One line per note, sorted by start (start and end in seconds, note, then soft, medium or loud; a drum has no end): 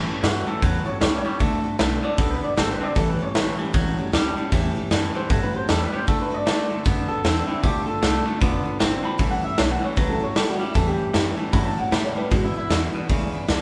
0.00 0.20 A2 medium
0.00 0.20 E3 medium
0.07 0.22 G3 soft
0.07 0.23 C#4 medium
0.07 0.23 E4 medium
0.07 0.23 A4 medium
0.07 muted upright bass stroke soft
0.23 0.46 G2 loud
0.23 0.45 A2 medium
0.23 0.45 E3 medium
0.23 0.46 G3 medium
0.23 0.47 F#4 medium
0.23 snare loud
0.23 open hi-hat medium
0.46 0.60 A2 medium
0.46 0.61 E3 medium
0.46 0.62 G3 soft
0.46 0.62 C#4 soft
0.46 0.62 E4 medium
0.46 0.62 A4 medium
0.46 0.63 A4 medium
0.46 muted upright bass stroke medium
0.62 0.85 E2 medium
0.62 0.86 A2 medium
0.62 0.98 A2 medium
0.62 0.86 E3 medium
0.62 0.98 F#3 medium
0.62 0.86 G3 medium
0.62 0.86 C#4 medium
0.62 0.85 E4 medium
0.62 0.84 A4 medium
0.62 0.86 B4 medium
0.62 kick loud
0.62 open hi-hat medium
0.85 0.99 G3 soft
0.85 1.00 C#4 soft
0.85 1.01 E4 medium
0.85 1.01 A4 medium
0.85 1.00 C#5 medium
0.85 muted upright bass stroke medium
1.00 1.24 C#2 loud
1.00 1.22 A2 medium
1.00 1.24 G3 medium
1.00 1.22 G3 loud
1.00 1.24 C#4 medium
1.00 1.24 E4 medium
1.00 1.23 A4 medium
1.00 1.39 C#5 loud
1.00 snare loud
1.00 open hi-hat medium
1.24 1.39 A2 medium
1.24 1.39 G3 medium
1.24 1.40 G3 soft
1.24 1.40 C#4 soft
1.24 1.40 E4 soft
1.24 1.40 A4 medium
1.24 muted upright bass stroke medium
1.39 1.63 D2 medium
1.39 1.63 D3 medium
1.39 1.76 D3 medium
1.39 1.64 A3 medium
1.39 1.76 A3 medium
1.39 1.64 C4 medium
1.39 1.63 F#4 medium
1.39 1.62 A4 medium
1.39 kick loud
1.39 open hi-hat soft
1.63 1.78 C4 medium
1.63 1.79 F#4 medium
1.63 1.79 A4 medium
1.63 muted upright bass stroke medium
1.79 2.02 B1 medium
1.79 2.00 D3 medium
1.79 2.02 A3 medium
1.79 2.00 A3 loud
1.79 2.03 C4 medium
1.79 2.03 F#4 medium
1.79 2.01 A4 medium
1.79 snare loud
1.79 open hi-hat medium
2.03 2.17 D3 medium
2.03 2.17 A3 medium
2.03 2.17 C4 soft
2.03 2.17 F#4 soft
2.03 2.18 A4 medium
2.03 2.17 D5 medium
2.17 2.41 C2 medium
2.17 2.41 D3 medium
2.17 2.54 D3 medium
2.17 2.41 A3 medium
2.17 2.54 B3 medium
2.17 2.42 C4 medium
2.17 2.41 F#4 medium
2.17 2.31 A4 medium
2.17 2.40 A4 medium
2.17 kick loud
2.17 open hi-hat medium
2.31 2.44 B4 medium
2.41 2.56 C4 soft
2.41 2.57 F#4 medium
2.41 2.57 A4 medium
2.41 2.57 D5 medium
2.41 muted upright bass stroke medium
2.56 2.80 G1 medium
2.56 2.78 D3 medium
2.56 2.80 A3 medium
2.56 2.81 C4 medium
2.56 2.78 C4 loud
2.56 2.80 F#4 medium
2.56 2.70 A4 medium
2.56 2.78 A4 medium
2.56 snare loud
2.56 open hi-hat medium
2.70 2.83 B4 loud
2.80 2.94 D3 medium
2.80 2.95 C4 medium
2.80 2.95 C4 soft
2.80 2.96 F#4 soft
2.80 2.96 A4 medium
2.80 2.96 D5 medium
2.80 muted upright bass stroke medium
2.95 3.19 A1 medium
2.95 3.19 A2 medium
2.95 3.32 A2 medium
2.95 3.19 E3 medium
2.95 3.32 E3 medium
2.95 3.19 G3 medium
2.95 3.19 C#4 medium
2.95 3.18 G4 loud
2.95 3.09 A4 medium
2.95 3.18 A4 loud
2.95 kick loud
2.95 open hi-hat soft
3.09 3.22 B4 medium
3.19 3.33 G3 soft
3.19 3.34 C#4 soft
3.19 3.35 G4 soft
3.19 3.35 A4 medium
3.19 3.60 C#5 loud
3.19 muted upright bass stroke medium
3.34 3.56 B1 medium
3.34 3.56 A2 medium
3.34 3.56 E3 loud
3.34 3.58 G3 medium
3.34 3.58 C#4 medium
3.34 3.57 G4 medium
3.34 3.56 A4 medium
3.34 snare loud
3.34 open hi-hat soft
3.57 3.72 A2 medium
3.57 3.73 E3 medium
3.57 3.73 G3 soft
3.57 3.73 C#4 soft
3.57 3.73 G4 soft
3.57 3.73 A4 medium
3.73 3.96 C#2 medium
3.73 3.97 A2 medium
3.73 4.10 A2 medium
3.73 3.97 E3 loud
3.73 4.10 F#3 loud
3.73 3.97 G3 loud
3.73 3.97 C#4 loud
3.73 3.96 G4 medium
3.73 3.96 A4 loud
3.73 kick loud
3.73 open hi-hat medium
3.97 4.11 G3 medium
3.97 4.12 C#4 medium
3.97 4.13 G4 medium
3.97 4.13 A4 medium
3.97 muted upright bass stroke medium
4.12 4.35 D2 medium
4.12 4.34 A2 medium
4.12 4.36 G3 medium
4.12 4.34 G3 loud
4.12 4.37 C#4 medium
4.12 4.36 G4 medium
4.12 4.35 A4 medium
4.12 snare loud
4.12 open hi-hat medium
4.36 4.50 A2 medium
4.36 4.51 G3 medium
4.36 4.51 G3 soft
4.36 4.52 C#4 medium
4.36 4.52 G4 medium
4.36 4.52 A4 medium
4.36 muted upright bass stroke medium
4.52 4.75 E2 loud
4.52 4.75 A2 loud
4.52 4.88 A2 medium
4.52 4.76 E3 medium
4.52 4.88 E3 medium
4.52 4.76 G3 medium
4.52 4.75 C#4 loud
4.52 4.74 G4 loud
4.52 4.74 A4 loud
4.52 kick loud
4.52 open hi-hat medium
4.75 4.89 G3 soft
4.75 4.90 C#4 medium
4.75 4.91 G4 medium
4.75 4.91 A4 medium
4.75 muted upright bass stroke medium
4.90 5.13 F#2 medium
4.90 5.12 A2 medium
4.90 5.12 E3 loud
4.90 5.14 G3 medium
4.90 5.14 C#4 medium
4.90 5.13 G4 medium
4.90 5.12 A4 medium
4.90 snare loud
4.90 open hi-hat medium
5.13 5.28 A2 medium
5.13 5.29 E3 medium
5.13 5.29 G3 soft
5.13 5.29 C#4 soft
5.13 5.30 G4 medium
5.13 5.29 A4 medium
5.13 5.30 C5 loud
5.13 muted upright bass stroke medium
5.29 5.52 G2 loud
5.29 5.53 A2 medium
5.29 5.66 A2 medium
5.29 5.53 E3 medium
5.29 5.66 F#3 medium
5.29 5.53 G3 medium
5.29 5.53 C#4 medium
5.29 5.52 G4 medium
5.29 5.43 A4 medium
5.29 5.51 A4 medium
5.29 kick loud
5.29 open hi-hat medium
5.43 5.56 B4 medium
5.52 5.67 G3 soft
5.52 5.67 C#4 soft
5.52 5.68 G4 soft
5.52 5.68 A4 medium
5.52 muted upright bass stroke medium
5.57 5.69 C5 medium
5.68 5.92 E2 medium
5.68 5.90 A2 loud
5.68 5.92 G3 medium
5.68 5.90 G3 loud
5.68 5.92 C#4 medium
5.68 5.91 G4 medium
5.68 5.83 A4 medium
5.68 5.91 A4 medium
5.68 snare loud
5.68 open hi-hat medium
5.83 5.96 B4 medium
5.92 6.06 A2 medium
5.92 6.06 G3 medium
5.92 6.07 G3 soft
5.92 6.07 C#4 soft
5.92 6.08 G4 medium
5.92 6.07 A4 medium
5.92 muted upright bass stroke medium
5.96 6.08 C5 loud
6.07 6.30 F#2 loud
6.07 6.31 D3 medium
6.07 6.43 D3 medium
6.07 6.31 A3 medium
6.07 6.44 A3 medium
6.07 6.31 C4 medium
6.07 6.31 F#4 loud
6.07 6.29 A4 medium
6.07 6.21 A4 medium
6.07 kick loud
6.07 open hi-hat soft
6.22 6.34 B4 loud
6.31 6.45 C4 soft
6.31 6.46 F#4 soft
6.31 6.46 A4 medium
6.31 6.72 D5 loud
6.46 6.69 G2 medium
6.46 6.67 D3 medium
6.46 6.70 A3 medium
6.46 6.68 A3 loud
6.46 6.70 C4 medium
6.46 6.69 F#4 medium
6.46 6.68 A4 medium
6.46 snare loud
6.46 open hi-hat medium
6.69 6.84 D3 medium
6.69 6.84 A3 medium
6.69 6.84 C4 soft
6.69 6.85 F#4 soft
6.69 6.85 A4 medium
6.69 muted upright bass stroke soft
6.85 7.08 F#2 medium
6.85 7.08 D3 medium
6.85 7.21 D3 medium
6.85 7.09 A3 loud
6.85 7.22 B3 medium
6.85 7.09 C4 loud
6.85 7.08 F#4 loud
6.85 7.07 A4 loud
6.85 kick loud
6.85 open hi-hat medium
7.08 7.23 C4 soft
7.08 7.24 F#4 medium
7.08 7.24 A4 medium
7.08 7.47 A4 loud
7.08 muted upright bass stroke medium
7.24 7.47 E2 loud
7.24 7.46 D3 medium
7.24 7.48 A3 medium
7.24 7.48 C4 medium
7.24 7.46 C4 medium
7.24 7.48 F#4 medium
7.24 7.46 A4 medium
7.24 snare loud
7.24 open hi-hat medium
7.47 7.62 D3 medium
7.47 7.62 C4 medium
7.47 7.63 C4 soft
7.47 7.63 E4 loud
7.47 7.64 F#4 soft
7.47 7.63 A4 medium
7.63 7.85 D2 medium
7.63 7.87 D3 medium
7.63 7.99 D3 medium
7.63 7.99 A3 medium
7.63 7.87 A3 medium
7.63 7.87 C4 medium
7.63 7.87 F4 medium
7.63 7.86 G4 loud
7.63 7.85 A4 medium
7.63 kick loud
7.63 open hi-hat medium
7.86 8.02 C4 soft
7.86 8.03 F4 medium
7.86 8.24 A4 loud
7.86 8.02 A4 medium
7.86 muted upright bass stroke medium
8.02 8.25 C2 medium
8.02 8.23 D3 medium
8.02 8.26 A3 medium
8.02 8.24 A3 loud
8.02 8.26 C4 medium
8.02 8.25 F4 medium
8.02 8.24 A4 medium
8.02 snare loud
8.02 open hi-hat medium
8.25 8.39 D3 medium
8.25 8.40 A3 medium
8.25 8.40 C4 soft
8.25 8.41 F4 medium
8.25 8.41 A4 medium
8.41 8.64 F1 medium
8.41 8.64 D3 medium
8.41 8.77 D3 medium
8.41 8.65 A3 medium
8.41 8.77 B3 loud
8.41 8.65 C4 medium
8.41 8.64 F4 loud
8.41 8.63 A4 loud
8.41 kick loud
8.41 open hi-hat medium
8.64 8.79 C4 soft
8.64 8.79 F4 medium
8.64 8.80 A4 medium
8.64 muted upright bass stroke medium
8.79 9.03 G1 medium
8.79 9.01 D3 medium
8.79 9.03 A3 medium
8.79 9.04 C4 medium
8.79 9.01 C4 loud
8.79 9.03 F4 medium
8.79 9.01 A4 medium
8.79 snare loud
8.79 open hi-hat medium
9.02 9.17 D3 medium
9.02 9.18 C4 medium
9.02 9.19 C4 soft
9.02 9.19 F4 soft
9.02 9.19 A4 medium
9.02 9.30 B5 loud
9.02 muted upright bass stroke medium
9.18 9.42 A1 medium
9.18 9.42 A2 medium
9.18 9.55 A2 medium
9.18 9.42 E3 medium
9.18 9.55 E3 medium
9.18 9.42 G3 medium
9.18 9.42 C#4 medium
9.18 9.41 E4 medium
9.18 9.40 A4 medium
9.18 kick loud
9.18 open hi-hat soft
9.31 9.44 F#5 loud
9.41 9.56 G3 soft
9.41 9.57 C#4 medium
9.41 9.58 E4 medium
9.41 9.58 A4 medium
9.41 9.57 E5 medium
9.41 muted upright bass stroke medium
9.57 9.81 B1 loud
9.57 9.79 A2 medium
9.57 9.79 E3 loud
9.57 9.81 G3 medium
9.57 9.81 C#4 medium
9.57 9.80 E4 medium
9.57 9.80 A4 medium
9.57 9.71 C#5 loud
9.57 snare loud
9.57 open hi-hat medium
9.72 9.84 F#5 medium
9.81 9.95 A2 medium
9.81 9.96 E3 medium
9.81 9.95 G3 soft
9.81 9.96 C#4 soft
9.81 9.96 E4 medium
9.81 9.96 A4 medium
9.81 9.96 C#5 loud
9.96 10.20 C#2 medium
9.96 10.20 A2 medium
9.96 10.33 A2 medium
9.96 10.20 E3 medium
9.96 10.33 F#3 loud
9.96 10.20 G3 medium
9.96 10.20 C#4 medium
9.96 10.19 E4 medium
9.96 10.18 A4 loud
9.96 10.10 B4 medium
9.96 kick loud
9.96 open hi-hat medium
10.10 10.23 A4 medium
10.19 10.34 G3 medium
10.19 10.35 C#4 medium
10.19 10.35 E4 medium
10.19 10.35 A4 medium
10.19 muted upright bass stroke medium
10.23 10.36 C#5 loud
10.35 10.58 D2 loud
10.35 10.57 A2 medium
10.35 10.59 G3 medium
10.35 10.57 G3 loud
10.35 10.59 C#4 medium
10.35 10.59 E4 medium
10.35 10.50 A4 loud
10.35 10.58 A4 medium
10.35 snare loud
10.35 open hi-hat medium
10.50 10.63 F#4 medium
10.59 10.73 A2 medium
10.59 10.74 G3 medium
10.59 10.74 G3 soft
10.59 10.74 C#4 soft
10.59 10.74 E4 soft
10.59 10.75 E4 loud
10.59 10.75 A4 medium
10.59 muted upright bass stroke soft
10.74 10.98 E2 medium
10.74 10.98 A2 medium
10.74 11.11 A2 medium
10.74 10.98 E3 medium
10.74 11.11 E3 loud
10.74 10.99 G3 loud
10.74 10.98 C#4 medium
10.74 10.97 E4 loud
10.74 10.88 A4 loud
10.74 10.97 A4 medium
10.74 kick loud
10.74 open hi-hat medium
10.87 11.25 G4 loud
10.98 11.12 G3 soft
10.98 11.13 C#4 soft
10.98 11.14 E4 soft
10.98 11.14 A4 soft
10.98 muted upright bass stroke medium
11.13 11.37 F#2 medium
11.13 11.35 A2 loud
11.13 11.35 E3 loud
11.13 11.37 G3 medium
11.13 11.38 C#4 medium
11.13 11.37 E4 medium
11.13 11.36 A4 medium
11.13 snare loud
11.13 open hi-hat medium
11.37 11.51 A2 medium
11.37 11.52 E3 medium
11.37 11.52 G3 soft
11.37 11.52 C#4 soft
11.37 11.52 E4 soft
11.37 11.53 A4 medium
11.37 muted upright bass stroke medium
11.52 11.76 G2 medium
11.52 11.76 A2 medium
11.52 11.89 A2 loud
11.52 11.76 E3 medium
11.52 11.89 F#3 loud
11.52 11.76 G3 medium
11.52 11.76 C#4 medium
11.52 11.76 E4 medium
11.52 11.75 A4 medium
11.52 11.66 B5 loud
11.52 kick loud
11.52 open hi-hat medium
11.66 11.79 A5 loud
11.76 11.90 G3 soft
11.76 11.91 C#4 soft
11.76 11.92 E4 medium
11.76 11.92 A4 medium
11.76 11.92 F#5 medium
11.76 muted upright bass stroke medium
11.91 12.13 A2 medium
11.91 12.15 A2 medium
11.91 12.15 G3 medium
11.91 12.13 G3 loud
11.91 12.15 C#4 medium
11.91 12.13 A4 medium
11.91 12.05 E5 loud
11.91 snare loud
11.91 open hi-hat medium
12.04 12.17 C#5 loud
12.15 12.30 A2 medium
12.15 12.30 G3 medium
12.15 12.30 G3 soft
12.15 12.31 C#4 soft
12.15 12.31 E4 medium
12.15 12.31 A4 medium
12.15 12.31 B4 medium
12.15 muted upright bass stroke medium
12.31 12.67 E2 medium
12.31 12.54 G#2 loud
12.31 12.67 B2 medium
12.31 12.54 E3 medium
12.31 12.55 G#3 medium
12.31 12.55 D4 medium
12.31 12.54 E4 medium
12.31 12.44 F#4 loud
12.31 12.53 B4 medium
12.31 kick loud
12.31 open hi-hat soft
12.44 12.57 E4 medium
12.54 12.69 D4 soft
12.54 12.70 E4 soft
12.54 12.78 E4 loud
12.54 12.70 B4 medium
12.54 muted upright bass stroke medium
12.70 12.93 E2 medium
12.70 12.91 E2 medium
12.70 12.92 B2 loud
12.70 12.94 G#3 medium
12.70 12.94 D4 medium
12.70 12.93 E4 medium
12.70 12.92 B4 medium
12.70 snare loud
12.70 open hi-hat medium
12.93 13.08 E2 medium
12.93 13.08 B2 medium
12.93 13.09 D4 soft
12.93 13.09 E4 medium
12.93 13.09 B4 medium
12.93 muted upright bass stroke medium
13.09 13.32 D2 loud
13.09 13.45 E2 medium
13.09 13.45 C#3 medium
13.09 13.33 E3 loud
13.09 13.33 G#3 medium
13.09 13.33 D4 loud
13.09 13.33 E4 loud
13.09 13.31 B4 loud
13.09 kick loud
13.09 open hi-hat soft
13.32 13.48 D4 soft
13.32 13.48 E4 medium
13.32 13.48 B4 medium
13.32 muted upright bass stroke medium
13.48 13.62 C#2 medium
13.48 13.62 E2 loud
13.48 13.62 D3 medium
13.48 13.62 G#3 medium
13.48 13.62 D4 medium
13.48 13.62 B4 medium
13.48 snare loud
13.48 open hi-hat medium